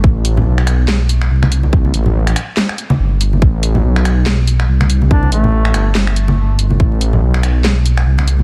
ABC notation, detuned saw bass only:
X:1
M:4/4
L:1/8
Q:"Swing 16ths" 1/4=142
K:Am
V:1 name="Detuned saw bass" clef=bass
A,,,2 B,,,4 C,,2- | C,, A,,,2 z3 G,,,2 | A,,,2 B,,,4 C,,2- | C,, A,,,2 G,,,4 G,,, |
A,,,2 B,,,4 C,,2 |]